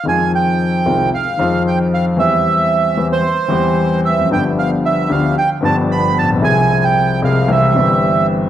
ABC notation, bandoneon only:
X:1
M:4/4
L:1/16
Q:1/4=113
K:Fm
V:1 name="Bandoneon"
a2 g6 f4 g2 f2 | =e6- e c6- c e2 | g2 f2 =e2 f2 g2 =a2 =b2 a2 | a3 g3 f2 =e6 z2 |]